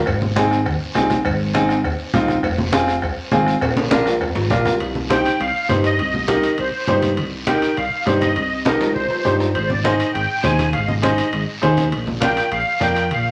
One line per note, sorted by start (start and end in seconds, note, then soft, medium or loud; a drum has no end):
0.06 0.67 G#1 loud
0.06 bombo low medium
0.06 bombo rim medium
0.06 cowbell loud
0.06 high conga soft
0.06 long guiro medium
0.22 high conga medium
0.36 0.57 C4 medium
0.36 0.57 D#4 medium
0.36 0.57 G#4 medium
0.36 bombo rim medium
0.36 high conga medium
0.36 short guiro medium
0.51 bombo rim medium
0.51 short guiro medium
0.66 0.78 D#2 loud
0.66 bombo low medium
0.66 bombo rim medium
0.66 cowbell medium
0.66 high conga soft
0.66 long guiro medium
0.95 1.19 C2 loud
0.95 1.16 C4 medium
0.95 1.16 D#4 medium
0.95 1.16 G#4 medium
0.95 bombo rim medium
0.95 high conga medium
0.95 low timbale medium
0.95 short guiro medium
1.10 bombo rim medium
1.10 high conga medium
1.10 short guiro medium
1.25 1.86 G#1 loud
1.25 bombo low medium
1.25 bombo rim medium
1.25 cowbell loud
1.25 high conga soft
1.25 long guiro medium
1.54 1.75 C4 medium
1.54 1.75 D#4 medium
1.54 1.75 G#4 medium
1.54 bombo rim medium
1.54 high conga medium
1.54 short guiro medium
1.69 bombo rim medium
1.69 short guiro medium
1.84 1.96 D#2 loud
1.84 bombo low medium
1.84 bombo rim medium
1.84 cowbell medium
1.84 high conga soft
1.84 long guiro medium
2.14 2.38 C2 loud
2.14 2.35 C4 medium
2.14 2.35 D#4 medium
2.14 2.35 F4 medium
2.14 bombo rim medium
2.14 high conga medium
2.14 low conga medium
2.14 short guiro medium
2.28 bombo rim medium
2.28 high conga medium
2.28 short guiro medium
2.43 3.04 F1 loud
2.43 bombo low medium
2.43 bombo rim medium
2.43 cowbell loud
2.43 high conga soft
2.43 long guiro medium
2.58 high conga medium
2.73 2.94 C4 medium
2.73 2.94 F4 medium
2.73 2.94 G#4 medium
2.73 bombo rim medium
2.73 high conga medium
2.73 short guiro medium
2.88 bombo rim medium
2.88 short guiro medium
3.02 3.15 C2 loud
3.02 bombo low medium
3.02 bombo rim medium
3.02 cowbell medium
3.02 high conga soft
3.02 long guiro medium
3.32 3.56 G#1 loud
3.32 3.53 C4 medium
3.32 3.53 F4 medium
3.32 3.53 G#4 medium
3.32 bombo rim medium
3.32 high conga medium
3.32 short guiro medium
3.46 bombo rim medium
3.46 short guiro medium
3.61 4.22 A#1 loud
3.61 bombo low medium
3.61 bombo rim medium
3.61 cowbell loud
3.61 high conga soft
3.61 high timbale medium
3.61 long guiro medium
3.76 high conga medium
3.76 high timbale loud
3.91 4.12 D4 medium
3.91 4.12 F4 medium
3.91 4.12 A#4 medium
3.91 bombo rim medium
3.91 high conga medium
3.91 high timbale medium
3.91 short guiro medium
4.06 bombo rim medium
4.06 low timbale loud
4.06 short guiro medium
4.21 4.33 F2 loud
4.21 bombo low medium
4.21 bombo rim medium
4.21 cowbell medium
4.21 high conga soft
4.21 low timbale medium
4.21 long guiro medium
4.35 4.49 G#1 medium
4.35 low timbale loud
4.50 4.64 A#1 medium
4.50 4.71 D4 medium
4.50 4.71 F4 medium
4.50 4.72 A#4 medium
4.50 bombo low medium
4.50 bombo rim medium
4.50 high conga medium
4.50 low conga medium
4.50 low timbale medium
4.50 short guiro medium
4.65 4.79 C2 medium
4.65 bombo rim medium
4.65 high conga medium
4.65 low timbale medium
4.65 short guiro medium
4.80 5.28 C2 loud
4.80 high conga soft
4.80 high timbale medium
4.80 long guiro medium
4.95 high conga medium
5.09 5.30 D#4 medium
5.09 5.31 G4 medium
5.09 5.31 C5 medium
5.09 5.41 G5 loud
5.09 high conga medium
5.09 high timbale medium
5.09 short guiro medium
5.25 high timbale medium
5.25 short guiro medium
5.40 5.52 C2 medium
5.40 5.68 F5 medium
5.40 high conga soft
5.40 high timbale medium
5.40 long guiro medium
5.69 6.01 G2 medium
5.69 5.90 D#4 medium
5.69 5.90 G4 medium
5.69 5.90 C5 medium
5.69 high conga medium
5.69 high timbale medium
5.69 short guiro medium
5.84 6.26 D#5 loud
5.84 high timbale medium
5.84 short guiro medium
5.99 6.47 C2 loud
5.99 high conga soft
5.99 high timbale medium
5.99 long guiro medium
6.14 high conga medium
6.28 6.49 D#4 medium
6.28 6.49 G4 medium
6.28 6.49 A#4 medium
6.28 6.57 D#5 medium
6.28 high conga medium
6.28 high timbale medium
6.28 short guiro medium
6.43 high timbale medium
6.43 short guiro medium
6.58 6.70 C2 medium
6.58 7.00 C5 medium
6.58 high conga soft
6.58 high timbale medium
6.58 long guiro medium
6.87 7.19 G2 medium
6.87 7.08 D#4 medium
6.87 7.09 G4 medium
6.87 7.09 C5 medium
6.87 high conga medium
6.87 high timbale medium
6.87 low timbale medium
6.87 short guiro medium
7.02 high conga medium
7.02 high timbale medium
7.02 short guiro medium
7.17 7.65 C2 loud
7.17 high conga soft
7.17 high timbale medium
7.17 long guiro medium
7.47 7.68 D#4 medium
7.47 7.68 G4 medium
7.47 7.68 A#4 medium
7.47 7.75 G5 medium
7.47 high conga medium
7.47 high timbale medium
7.47 short guiro medium
7.62 high timbale medium
7.62 short guiro medium
7.77 7.89 C2 medium
7.77 8.04 F5 medium
7.77 high conga soft
7.77 high timbale medium
7.77 long guiro medium
8.06 8.38 G2 loud
8.06 8.27 D#4 medium
8.06 8.27 G4 medium
8.06 8.28 C5 medium
8.06 high conga medium
8.06 high timbale medium
8.06 short guiro medium
8.20 8.63 D#5 medium
8.20 high conga medium
8.20 high timbale medium
8.20 short guiro medium
8.36 8.84 C2 loud
8.36 high conga soft
8.36 high timbale medium
8.36 long guiro medium
8.65 8.87 D#4 medium
8.65 8.87 G4 medium
8.65 8.87 A#4 medium
8.65 8.93 D#5 medium
8.65 high conga medium
8.65 high timbale medium
8.65 short guiro medium
8.81 low timbale medium
8.81 short guiro medium
8.94 9.07 C2 medium
8.94 9.36 C5 medium
8.94 high conga soft
8.94 long guiro medium
9.10 low timbale medium
9.25 9.56 G2 loud
9.25 9.46 D#4 medium
9.25 9.46 G4 medium
9.25 9.46 C5 medium
9.25 high conga medium
9.25 low timbale medium
9.25 short guiro medium
9.40 low timbale medium
9.40 short guiro medium
9.54 10.02 G#1 loud
9.54 9.70 C5 medium
9.54 high conga soft
9.54 high timbale medium
9.54 long guiro medium
9.68 9.82 D5 medium
9.68 high conga medium
9.83 10.05 D#4 medium
9.83 10.05 G#4 medium
9.83 10.06 C5 medium
9.83 10.11 D#5 medium
9.83 high conga medium
9.83 high timbale medium
9.83 short guiro medium
10.00 high timbale medium
10.00 short guiro medium
10.13 10.26 G#1 medium
10.13 10.44 G5 medium
10.13 high conga soft
10.13 high timbale medium
10.13 long guiro medium
10.43 10.76 D#2 loud
10.43 10.64 D#4 medium
10.43 10.64 G#4 medium
10.43 10.65 C5 medium
10.43 10.74 G#5 medium
10.43 high conga medium
10.43 high timbale medium
10.43 short guiro medium
10.59 high conga medium
10.59 high timbale medium
10.59 short guiro medium
10.73 11.22 G#1 loud
10.73 10.89 F5 medium
10.73 high conga soft
10.73 high timbale medium
10.73 long guiro medium
10.87 10.94 D#5 medium
10.87 high conga medium
11.02 11.23 D#4 medium
11.02 11.24 G#4 medium
11.02 11.24 C5 medium
11.02 11.44 D#5 medium
11.02 high conga medium
11.02 high timbale medium
11.02 short guiro medium
11.18 high timbale medium
11.18 short guiro medium
11.33 11.45 G#1 medium
11.33 high conga soft
11.33 high timbale medium
11.33 long guiro medium
11.62 11.94 D#2 medium
11.62 11.83 D#4 medium
11.62 11.83 G#4 medium
11.62 11.83 C5 medium
11.62 high conga medium
11.62 high timbale medium
11.62 short guiro medium
11.77 high conga medium
11.77 high timbale medium
11.77 short guiro medium
11.92 12.40 A#1 loud
11.92 high conga soft
11.92 high timbale medium
11.92 long guiro medium
12.07 high conga medium
12.20 12.42 D4 medium
12.20 12.42 F4 medium
12.20 12.42 A#4 medium
12.20 12.50 G5 loud
12.20 high conga medium
12.20 high timbale medium
12.20 short guiro medium
12.37 high timbale medium
12.37 short guiro medium
12.51 12.64 A#1 medium
12.51 12.80 F5 medium
12.51 high conga soft
12.51 high timbale medium
12.51 long guiro medium
12.80 13.12 F2 loud
12.80 13.01 D4 medium
12.80 13.02 F4 medium
12.80 13.02 A#4 medium
12.80 13.09 G5 loud
12.80 high conga medium
12.80 high timbale medium
12.80 short guiro medium
12.96 high timbale medium
12.96 short guiro medium
13.11 13.31 A#1 loud
13.11 13.31 F5 medium
13.11 high conga soft
13.11 high timbale medium
13.11 long guiro medium